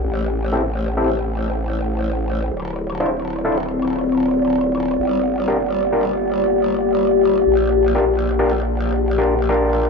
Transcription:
0.00 2.48 G4 medium
0.04 2.49 A1 medium
0.04 2.50 A3 medium
0.04 4.96 E4 medium
0.04 2.50 C5 medium
0.53 0.62 C4 medium
0.53 0.62 E4 medium
0.53 0.62 G4 medium
0.53 0.62 A4 medium
0.97 1.09 C4 medium
0.97 1.09 E4 medium
0.97 1.09 G4 medium
0.97 1.09 A4 medium
2.51 4.96 D1 medium
2.51 4.97 C4 medium
2.51 9.90 F4 medium
2.51 9.90 D5 medium
3.00 3.10 D4 medium
3.00 3.10 E4 medium
3.00 3.10 F4 medium
3.00 3.10 C5 loud
3.45 3.57 D4 medium
3.45 3.57 E4 medium
3.45 3.57 F4 medium
3.45 3.57 A4 loud
4.99 7.44 G1 medium
4.99 9.90 A#3 medium
4.99 9.90 G4 medium
5.48 5.57 D4 medium
5.48 5.57 F4 medium
5.48 5.57 G4 medium
5.48 5.57 A#4 medium
5.92 6.05 D4 medium
5.92 6.05 F4 medium
5.92 6.05 G4 medium
5.92 6.05 A#4 medium
7.47 9.90 A#1 medium
7.95 8.05 D4 medium
7.95 8.05 F4 medium
7.95 8.05 G4 medium
7.95 8.05 A#4 loud
8.39 8.52 D4 medium
8.39 8.52 F4 medium
8.39 8.52 G4 medium
8.39 8.52 A#4 loud
9.18 9.34 D4 medium
9.18 9.34 F4 medium
9.18 9.34 G4 medium
9.18 9.34 A#4 medium
9.49 9.90 D4 medium
9.49 9.90 F4 medium
9.49 9.90 G4 medium
9.49 9.90 A#4 loud

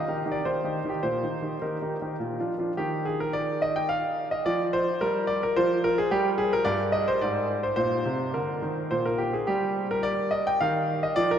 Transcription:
0.00 0.14 D#5 medium
0.08 0.21 D#3 soft
0.08 0.22 D#4 soft
0.08 0.22 G4 soft
0.26 0.40 D#3 soft
0.26 0.40 D#4 soft
0.26 0.40 G4 soft
0.32 0.45 D5 medium
0.45 0.59 D#3 soft
0.45 0.59 D#4 soft
0.45 0.59 G4 soft
0.45 0.88 C5 medium
0.64 0.78 D#3 soft
0.64 0.78 D#4 soft
0.64 0.78 G4 soft
0.84 0.98 D#3 soft
0.84 0.99 D#4 soft
0.84 0.88 G4 soft
0.89 1.03 G4 medium
1.03 1.22 A#2 soft
1.03 1.61 C5 medium
1.23 1.37 D#3 soft
1.23 1.37 D#4 soft
1.23 1.37 G4 soft
1.42 1.56 D#3 soft
1.42 1.57 D#4 soft
1.42 1.56 G4 soft
1.62 1.76 D#3 soft
1.62 1.76 D#4 soft
1.62 1.76 G4 soft
1.62 2.48 A#4 soft
1.82 1.95 D#3 soft
1.82 1.95 D#4 soft
1.82 1.96 G4 soft
2.02 2.15 D#3 soft
2.02 2.15 D#4 soft
2.02 2.15 G4 soft
2.20 2.38 A#2 soft
2.39 2.53 F3 soft
2.39 2.53 D4 soft
2.39 2.53 F4 soft
2.58 2.72 F3 soft
2.58 2.72 D4 soft
2.58 2.72 F4 soft
2.77 3.99 D#3 medium
2.77 3.05 G4 medium
3.05 3.19 G#4 medium
3.20 3.34 A#4 medium
3.33 3.61 D5 medium
3.62 3.75 D#5 medium
3.76 3.89 G5 medium
3.89 4.27 F5 medium
4.31 4.45 D#5 medium
4.46 4.85 F3 medium
4.46 4.62 D5 medium
4.73 5.00 C5 medium
5.01 5.41 G3 medium
5.01 5.28 A#4 medium
5.27 5.41 D5 medium
5.43 5.56 A#4 medium
5.56 5.96 F3 medium
5.56 5.81 C5 medium
5.84 5.97 A#4 medium
5.98 6.11 G#4 medium
6.11 6.51 G3 medium
6.11 6.27 G4 medium
6.38 6.52 G#4 medium
6.53 6.66 A#4 medium
6.65 7.06 G2 medium
6.65 6.82 D5 medium
6.92 7.07 D#5 medium
7.08 7.22 C5 medium
7.21 7.62 G#2 medium
7.21 7.47 D5 medium
7.63 7.75 C5 medium
7.76 8.04 A#2 medium
7.76 8.34 C5 medium
8.06 8.33 C3 soft
8.34 8.62 D3 soft
8.34 8.91 A#4 medium
8.62 8.90 D#3 soft
8.91 9.32 A#2 soft
8.91 9.06 C5 medium
9.06 9.20 A#4 medium
9.18 9.34 G4 medium
9.33 9.48 G#4 medium
9.47 10.29 G3 medium
9.47 9.86 G4 medium
9.91 10.05 A#4 medium
10.03 10.32 D5 medium
10.31 10.46 D#5 medium
10.47 10.61 G5 medium
10.61 11.01 D#3 medium
10.61 11.03 F5 medium
11.03 11.17 D#5 medium
11.16 11.39 F3 medium
11.16 11.30 D5 loud
11.31 11.39 A#4 medium

